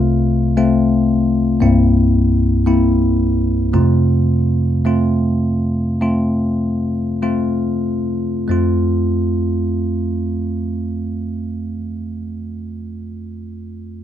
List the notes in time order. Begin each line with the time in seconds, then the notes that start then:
Already playing: C2 C3 A3 C4 F4
0.57 A3 C4 F4
1.60 C2 G2 A#3 C4 E4
2.66 A#3 C4 E4
3.73 F2 C3 A3 C4 F4
4.85 A3 C4 F4
6.01 A3 C4 F4
7.22 A3 C4 F4
8.48 F2 A3 C4 F4